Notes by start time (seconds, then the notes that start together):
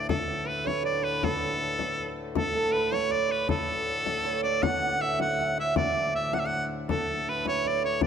Already playing: B4 D5 E5 F#5
0.09 D2 A2 A4, frame drum
0.45 B4
0.64 C#5, frame drum
0.83 D5, frame drum
1.02 B4
1.23 A4, frame drum
1.79 frame drum
1.99 frame drum
2.35 A4, frame drum
2.55 A4
2.72 B4
2.92 C#5, frame drum
3.09 D5, frame drum
3.29 B4
3.49 A4, frame drum
3.68 frame drum
4.06 frame drum
4.25 C#5
4.43 D5
4.62 D2 A2 F#5, frame drum
4.83 F#5
5.01 E5
5.19 F#5, frame drum
5.39 F#5, frame drum
5.58 E5
5.76 D5, frame drum
6.15 E5
6.33 F#5, frame drum
6.40 E5
6.45 F#5
6.53 frame drum
6.89 A4, frame drum
7.29 B4
7.45 C#5, frame drum
7.64 D5, frame drum
7.84 C#5
8.01 D5, frame drum